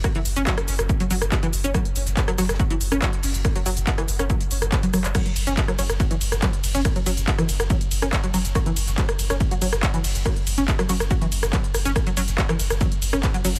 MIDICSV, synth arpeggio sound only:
0, 0, Header, 1, 2, 480
1, 0, Start_track
1, 0, Tempo, 425532
1, 47, Time_signature, 4, 2, 24, 8
1, 15330, End_track
2, 0, Start_track
2, 0, Title_t, "Synth arpeggio sound"
2, 0, Program_c, 0, 84
2, 49, Note_on_c, 0, 66, 82
2, 75, Note_off_c, 0, 66, 0
2, 172, Note_on_c, 0, 52, 102
2, 214, Note_off_c, 0, 52, 0
2, 411, Note_on_c, 0, 61, 106
2, 475, Note_off_c, 0, 61, 0
2, 527, Note_on_c, 0, 54, 87
2, 595, Note_off_c, 0, 54, 0
2, 1131, Note_on_c, 0, 54, 107
2, 1156, Note_off_c, 0, 54, 0
2, 1248, Note_on_c, 0, 54, 103
2, 1293, Note_off_c, 0, 54, 0
2, 1488, Note_on_c, 0, 66, 80
2, 1515, Note_off_c, 0, 66, 0
2, 1612, Note_on_c, 0, 52, 105
2, 1654, Note_off_c, 0, 52, 0
2, 1853, Note_on_c, 0, 61, 108
2, 1916, Note_off_c, 0, 61, 0
2, 1968, Note_on_c, 0, 54, 86
2, 2035, Note_off_c, 0, 54, 0
2, 2571, Note_on_c, 0, 54, 104
2, 2597, Note_off_c, 0, 54, 0
2, 2688, Note_on_c, 0, 54, 105
2, 2733, Note_off_c, 0, 54, 0
2, 2927, Note_on_c, 0, 66, 86
2, 2954, Note_off_c, 0, 66, 0
2, 3050, Note_on_c, 0, 52, 107
2, 3093, Note_off_c, 0, 52, 0
2, 3290, Note_on_c, 0, 61, 106
2, 3355, Note_off_c, 0, 61, 0
2, 3407, Note_on_c, 0, 54, 81
2, 3475, Note_off_c, 0, 54, 0
2, 4011, Note_on_c, 0, 54, 104
2, 4036, Note_off_c, 0, 54, 0
2, 4128, Note_on_c, 0, 54, 100
2, 4173, Note_off_c, 0, 54, 0
2, 4368, Note_on_c, 0, 66, 84
2, 4395, Note_off_c, 0, 66, 0
2, 4491, Note_on_c, 0, 52, 104
2, 4534, Note_off_c, 0, 52, 0
2, 4731, Note_on_c, 0, 61, 100
2, 4795, Note_off_c, 0, 61, 0
2, 4848, Note_on_c, 0, 54, 84
2, 4915, Note_off_c, 0, 54, 0
2, 5450, Note_on_c, 0, 54, 106
2, 5476, Note_off_c, 0, 54, 0
2, 5567, Note_on_c, 0, 54, 107
2, 5612, Note_off_c, 0, 54, 0
2, 5807, Note_on_c, 0, 54, 85
2, 5875, Note_off_c, 0, 54, 0
2, 6170, Note_on_c, 0, 61, 108
2, 6234, Note_off_c, 0, 61, 0
2, 6410, Note_on_c, 0, 54, 102
2, 6436, Note_off_c, 0, 54, 0
2, 6528, Note_on_c, 0, 54, 106
2, 6573, Note_off_c, 0, 54, 0
2, 6767, Note_on_c, 0, 66, 82
2, 6794, Note_off_c, 0, 66, 0
2, 6890, Note_on_c, 0, 52, 104
2, 6933, Note_off_c, 0, 52, 0
2, 7247, Note_on_c, 0, 54, 81
2, 7315, Note_off_c, 0, 54, 0
2, 7610, Note_on_c, 0, 61, 110
2, 7674, Note_off_c, 0, 61, 0
2, 7850, Note_on_c, 0, 54, 103
2, 7876, Note_off_c, 0, 54, 0
2, 7967, Note_on_c, 0, 54, 107
2, 8012, Note_off_c, 0, 54, 0
2, 8207, Note_on_c, 0, 66, 86
2, 8235, Note_off_c, 0, 66, 0
2, 8329, Note_on_c, 0, 52, 107
2, 8373, Note_off_c, 0, 52, 0
2, 8687, Note_on_c, 0, 54, 83
2, 8755, Note_off_c, 0, 54, 0
2, 9050, Note_on_c, 0, 61, 109
2, 9115, Note_off_c, 0, 61, 0
2, 9290, Note_on_c, 0, 54, 106
2, 9316, Note_off_c, 0, 54, 0
2, 9406, Note_on_c, 0, 54, 108
2, 9452, Note_off_c, 0, 54, 0
2, 9647, Note_on_c, 0, 66, 89
2, 9674, Note_off_c, 0, 66, 0
2, 9770, Note_on_c, 0, 52, 104
2, 9813, Note_off_c, 0, 52, 0
2, 10127, Note_on_c, 0, 54, 83
2, 10195, Note_off_c, 0, 54, 0
2, 10491, Note_on_c, 0, 61, 100
2, 10555, Note_off_c, 0, 61, 0
2, 10730, Note_on_c, 0, 54, 105
2, 10756, Note_off_c, 0, 54, 0
2, 10847, Note_on_c, 0, 54, 105
2, 10893, Note_off_c, 0, 54, 0
2, 11089, Note_on_c, 0, 66, 80
2, 11115, Note_off_c, 0, 66, 0
2, 11212, Note_on_c, 0, 52, 102
2, 11254, Note_off_c, 0, 52, 0
2, 11569, Note_on_c, 0, 54, 86
2, 11636, Note_off_c, 0, 54, 0
2, 11932, Note_on_c, 0, 61, 105
2, 11995, Note_off_c, 0, 61, 0
2, 12171, Note_on_c, 0, 54, 104
2, 12197, Note_off_c, 0, 54, 0
2, 12288, Note_on_c, 0, 54, 102
2, 12333, Note_off_c, 0, 54, 0
2, 12528, Note_on_c, 0, 66, 87
2, 12555, Note_off_c, 0, 66, 0
2, 12650, Note_on_c, 0, 52, 100
2, 12693, Note_off_c, 0, 52, 0
2, 13007, Note_on_c, 0, 54, 81
2, 13075, Note_off_c, 0, 54, 0
2, 13371, Note_on_c, 0, 61, 109
2, 13435, Note_off_c, 0, 61, 0
2, 13611, Note_on_c, 0, 54, 106
2, 13637, Note_off_c, 0, 54, 0
2, 13728, Note_on_c, 0, 54, 107
2, 13773, Note_off_c, 0, 54, 0
2, 13969, Note_on_c, 0, 66, 88
2, 13995, Note_off_c, 0, 66, 0
2, 14092, Note_on_c, 0, 52, 101
2, 14134, Note_off_c, 0, 52, 0
2, 14449, Note_on_c, 0, 54, 87
2, 14516, Note_off_c, 0, 54, 0
2, 14812, Note_on_c, 0, 61, 110
2, 14875, Note_off_c, 0, 61, 0
2, 15051, Note_on_c, 0, 54, 106
2, 15076, Note_off_c, 0, 54, 0
2, 15168, Note_on_c, 0, 54, 106
2, 15213, Note_off_c, 0, 54, 0
2, 15330, End_track
0, 0, End_of_file